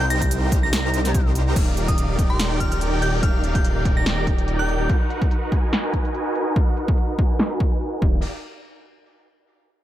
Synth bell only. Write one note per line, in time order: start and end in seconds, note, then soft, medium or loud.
0.01 0.07 G6 medium
0.10 0.18 A#6 medium
0.22 0.28 A#6 medium
0.63 1.21 A#6 medium
1.88 2.04 D#6 medium
2.30 2.45 C6 medium
2.60 2.68 F6 medium
2.72 2.78 F6 medium
3.02 3.21 G6 medium
3.23 3.39 F6 medium
3.55 3.70 G6 medium
3.97 4.12 A#6 medium
4.59 4.90 G6 medium